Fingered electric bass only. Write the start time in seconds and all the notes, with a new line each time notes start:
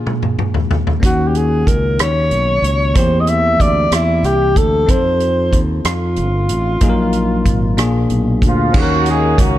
1.03 D#2
1.67 C#2
1.99 D#2
2.31 B1
2.62 C#2
2.96 E2
3.60 D2
3.91 E2
4.23 C2
4.57 D2
4.89 F2
5.53 D#2
5.85 F2
6.17 G1
6.50 A1
6.81 A#1
7.46 G#1
7.79 A#1
8.10 B1
8.42 D2
8.74 D#2
9.39 C#2